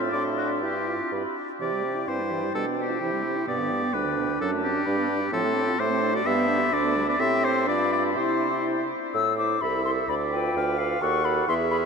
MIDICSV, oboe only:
0, 0, Header, 1, 2, 480
1, 0, Start_track
1, 0, Key_signature, 0, "major"
1, 0, Tempo, 487409
1, 612, Time_signature, 2, 2, 24, 8
1, 2047, Tempo, 464396
1, 6847, Tempo, 482703
1, 9727, Tempo, 465839
1, 12030, End_track
2, 0, Start_track
2, 0, Title_t, "Oboe"
2, 0, Program_c, 0, 68
2, 122, Note_on_c, 0, 74, 57
2, 232, Note_off_c, 0, 74, 0
2, 369, Note_on_c, 0, 66, 43
2, 479, Note_off_c, 0, 66, 0
2, 612, Note_on_c, 0, 67, 44
2, 1089, Note_off_c, 0, 67, 0
2, 1587, Note_on_c, 0, 74, 58
2, 2049, Note_on_c, 0, 72, 49
2, 2064, Note_off_c, 0, 74, 0
2, 2527, Note_off_c, 0, 72, 0
2, 2533, Note_on_c, 0, 69, 61
2, 2641, Note_off_c, 0, 69, 0
2, 2778, Note_on_c, 0, 67, 46
2, 3479, Note_off_c, 0, 67, 0
2, 3493, Note_on_c, 0, 74, 64
2, 3965, Note_on_c, 0, 71, 61
2, 3980, Note_off_c, 0, 74, 0
2, 4449, Note_off_c, 0, 71, 0
2, 4453, Note_on_c, 0, 69, 58
2, 4561, Note_off_c, 0, 69, 0
2, 4693, Note_on_c, 0, 67, 58
2, 5391, Note_off_c, 0, 67, 0
2, 5405, Note_on_c, 0, 69, 69
2, 5886, Note_on_c, 0, 72, 71
2, 5901, Note_off_c, 0, 69, 0
2, 6246, Note_off_c, 0, 72, 0
2, 6257, Note_on_c, 0, 74, 74
2, 6372, Note_on_c, 0, 76, 78
2, 6388, Note_off_c, 0, 74, 0
2, 6856, Note_on_c, 0, 74, 84
2, 6871, Note_off_c, 0, 76, 0
2, 7204, Note_off_c, 0, 74, 0
2, 7211, Note_on_c, 0, 74, 80
2, 7322, Note_on_c, 0, 76, 88
2, 7337, Note_off_c, 0, 74, 0
2, 7563, Note_on_c, 0, 72, 77
2, 7578, Note_off_c, 0, 76, 0
2, 7793, Note_off_c, 0, 72, 0
2, 7799, Note_on_c, 0, 74, 79
2, 8032, Note_off_c, 0, 74, 0
2, 8042, Note_on_c, 0, 74, 69
2, 8151, Note_off_c, 0, 74, 0
2, 8285, Note_on_c, 0, 72, 61
2, 8763, Note_off_c, 0, 72, 0
2, 9729, Note_on_c, 0, 76, 58
2, 10216, Note_on_c, 0, 74, 56
2, 10232, Note_off_c, 0, 76, 0
2, 10697, Note_off_c, 0, 74, 0
2, 10706, Note_on_c, 0, 77, 66
2, 11184, Note_on_c, 0, 78, 65
2, 11200, Note_off_c, 0, 77, 0
2, 11656, Note_on_c, 0, 76, 70
2, 11671, Note_off_c, 0, 78, 0
2, 12030, Note_off_c, 0, 76, 0
2, 12030, End_track
0, 0, End_of_file